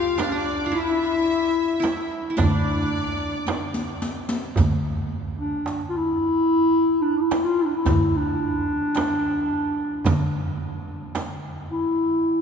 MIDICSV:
0, 0, Header, 1, 8, 480
1, 0, Start_track
1, 0, Tempo, 1096892
1, 1997, Time_signature, 10, 3, 24, 8
1, 5433, End_track
2, 0, Start_track
2, 0, Title_t, "Violin section"
2, 0, Program_c, 0, 48
2, 0, Note_on_c, 0, 77, 72
2, 142, Note_off_c, 0, 77, 0
2, 157, Note_on_c, 0, 74, 69
2, 327, Note_off_c, 0, 74, 0
2, 334, Note_on_c, 0, 76, 75
2, 927, Note_off_c, 0, 76, 0
2, 1044, Note_on_c, 0, 74, 69
2, 1743, Note_off_c, 0, 74, 0
2, 5433, End_track
3, 0, Start_track
3, 0, Title_t, "Clarinet"
3, 0, Program_c, 1, 71
3, 0, Note_on_c, 1, 65, 78
3, 82, Note_on_c, 1, 62, 66
3, 89, Note_off_c, 1, 65, 0
3, 113, Note_on_c, 1, 61, 62
3, 119, Note_off_c, 1, 62, 0
3, 151, Note_on_c, 1, 62, 71
3, 158, Note_off_c, 1, 61, 0
3, 334, Note_on_c, 1, 64, 83
3, 340, Note_off_c, 1, 62, 0
3, 927, Note_off_c, 1, 64, 0
3, 1054, Note_on_c, 1, 62, 76
3, 1748, Note_off_c, 1, 62, 0
3, 2361, Note_on_c, 1, 62, 75
3, 2553, Note_off_c, 1, 62, 0
3, 2579, Note_on_c, 1, 65, 65
3, 2611, Note_on_c, 1, 64, 106
3, 2618, Note_off_c, 1, 65, 0
3, 3071, Note_on_c, 1, 62, 85
3, 3078, Note_off_c, 1, 64, 0
3, 3139, Note_on_c, 1, 64, 76
3, 3145, Note_off_c, 1, 62, 0
3, 3193, Note_off_c, 1, 64, 0
3, 3202, Note_on_c, 1, 64, 82
3, 3258, Note_on_c, 1, 65, 93
3, 3265, Note_off_c, 1, 64, 0
3, 3335, Note_on_c, 1, 64, 79
3, 3342, Note_off_c, 1, 65, 0
3, 3351, Note_on_c, 1, 62, 65
3, 3357, Note_off_c, 1, 64, 0
3, 3394, Note_on_c, 1, 64, 89
3, 3401, Note_off_c, 1, 62, 0
3, 3575, Note_on_c, 1, 62, 94
3, 3581, Note_off_c, 1, 64, 0
3, 4676, Note_off_c, 1, 62, 0
3, 5128, Note_on_c, 1, 64, 80
3, 5433, Note_off_c, 1, 64, 0
3, 5433, End_track
4, 0, Start_track
4, 0, Title_t, "Qanun"
4, 0, Program_c, 2, 107
4, 0, Note_on_c, 2, 65, 66
4, 0, Note_on_c, 2, 67, 58
4, 77, Note_on_c, 2, 62, 65
4, 137, Note_off_c, 2, 62, 0
4, 139, Note_on_c, 2, 62, 64
4, 286, Note_off_c, 2, 65, 0
4, 288, Note_on_c, 2, 65, 56
4, 305, Note_off_c, 2, 67, 0
4, 313, Note_on_c, 2, 64, 67
4, 339, Note_off_c, 2, 65, 0
4, 785, Note_off_c, 2, 64, 0
4, 787, Note_on_c, 2, 64, 59
4, 792, Note_off_c, 2, 62, 0
4, 1004, Note_off_c, 2, 64, 0
4, 1006, Note_on_c, 2, 64, 45
4, 1038, Note_on_c, 2, 62, 62
4, 1616, Note_off_c, 2, 64, 0
4, 1740, Note_off_c, 2, 62, 0
4, 5433, End_track
5, 0, Start_track
5, 0, Title_t, "Double bass"
5, 0, Program_c, 3, 43
5, 0, Note_on_c, 3, 37, 88
5, 839, Note_off_c, 3, 37, 0
5, 1039, Note_on_c, 3, 38, 81
5, 1866, Note_off_c, 3, 38, 0
5, 1996, Note_on_c, 3, 38, 90
5, 3238, Note_off_c, 3, 38, 0
5, 3436, Note_on_c, 3, 38, 87
5, 4264, Note_off_c, 3, 38, 0
5, 4396, Note_on_c, 3, 50, 85
5, 5433, Note_off_c, 3, 50, 0
5, 5433, End_track
6, 0, Start_track
6, 0, Title_t, "Darbuka"
6, 80, Note_on_c, 9, 63, 60
6, 124, Note_off_c, 9, 63, 0
6, 803, Note_on_c, 9, 63, 64
6, 847, Note_off_c, 9, 63, 0
6, 1042, Note_on_c, 9, 64, 95
6, 1085, Note_off_c, 9, 64, 0
6, 1523, Note_on_c, 9, 63, 65
6, 1567, Note_off_c, 9, 63, 0
6, 1763, Note_on_c, 9, 62, 28
6, 1807, Note_off_c, 9, 62, 0
6, 1995, Note_on_c, 9, 64, 87
6, 2038, Note_off_c, 9, 64, 0
6, 2238, Note_on_c, 9, 62, 24
6, 2282, Note_off_c, 9, 62, 0
6, 2476, Note_on_c, 9, 63, 67
6, 2520, Note_off_c, 9, 63, 0
6, 3201, Note_on_c, 9, 63, 64
6, 3245, Note_off_c, 9, 63, 0
6, 3440, Note_on_c, 9, 64, 77
6, 3484, Note_off_c, 9, 64, 0
6, 3919, Note_on_c, 9, 63, 66
6, 3963, Note_off_c, 9, 63, 0
6, 4158, Note_on_c, 9, 62, 25
6, 4202, Note_off_c, 9, 62, 0
6, 4396, Note_on_c, 9, 64, 79
6, 4440, Note_off_c, 9, 64, 0
6, 4642, Note_on_c, 9, 62, 26
6, 4686, Note_off_c, 9, 62, 0
6, 4879, Note_on_c, 9, 63, 66
6, 4923, Note_off_c, 9, 63, 0
6, 5433, End_track
7, 0, Start_track
7, 0, Title_t, "Frame drum"
7, 85, Note_on_c, 9, 64, 71
7, 129, Note_off_c, 9, 64, 0
7, 804, Note_on_c, 9, 64, 72
7, 848, Note_off_c, 9, 64, 0
7, 1043, Note_on_c, 9, 64, 86
7, 1087, Note_off_c, 9, 64, 0
7, 1523, Note_on_c, 9, 64, 77
7, 1567, Note_off_c, 9, 64, 0
7, 2002, Note_on_c, 9, 64, 74
7, 2046, Note_off_c, 9, 64, 0
7, 3202, Note_on_c, 9, 64, 69
7, 3246, Note_off_c, 9, 64, 0
7, 3441, Note_on_c, 9, 64, 83
7, 3484, Note_off_c, 9, 64, 0
7, 3925, Note_on_c, 9, 64, 78
7, 3969, Note_off_c, 9, 64, 0
7, 4403, Note_on_c, 9, 64, 97
7, 4447, Note_off_c, 9, 64, 0
7, 4881, Note_on_c, 9, 64, 69
7, 4925, Note_off_c, 9, 64, 0
7, 5433, End_track
8, 0, Start_track
8, 0, Title_t, "Riq"
8, 80, Note_on_c, 9, 54, 49
8, 124, Note_off_c, 9, 54, 0
8, 797, Note_on_c, 9, 54, 50
8, 840, Note_off_c, 9, 54, 0
8, 1036, Note_on_c, 9, 54, 56
8, 1080, Note_off_c, 9, 54, 0
8, 1517, Note_on_c, 9, 54, 49
8, 1560, Note_off_c, 9, 54, 0
8, 1637, Note_on_c, 9, 54, 61
8, 1681, Note_off_c, 9, 54, 0
8, 1759, Note_on_c, 9, 54, 72
8, 1802, Note_off_c, 9, 54, 0
8, 1876, Note_on_c, 9, 54, 88
8, 1920, Note_off_c, 9, 54, 0
8, 2000, Note_on_c, 9, 54, 55
8, 2044, Note_off_c, 9, 54, 0
8, 2483, Note_on_c, 9, 54, 46
8, 2527, Note_off_c, 9, 54, 0
8, 3199, Note_on_c, 9, 54, 52
8, 3243, Note_off_c, 9, 54, 0
8, 3438, Note_on_c, 9, 54, 52
8, 3482, Note_off_c, 9, 54, 0
8, 3915, Note_on_c, 9, 54, 49
8, 3959, Note_off_c, 9, 54, 0
8, 4400, Note_on_c, 9, 54, 54
8, 4444, Note_off_c, 9, 54, 0
8, 4880, Note_on_c, 9, 54, 50
8, 4924, Note_off_c, 9, 54, 0
8, 5433, End_track
0, 0, End_of_file